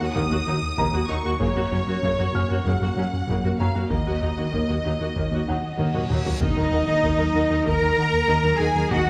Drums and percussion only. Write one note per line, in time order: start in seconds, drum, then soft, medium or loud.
0.16 taiko medium
0.78 taiko medium
1.41 taiko medium
2.03 taiko medium
2.66 taiko medium
3.28 taiko medium
3.90 taiko medium
4.54 taiko medium
5.16 taiko medium
5.79 taiko low-mid medium
5.94 taiko mid medium
6.10 taiko mid medium
6.26 taiko low medium
6.41 taiko medium
7.03 taiko medium
7.66 taiko medium
8.28 taiko medium
8.91 taiko medium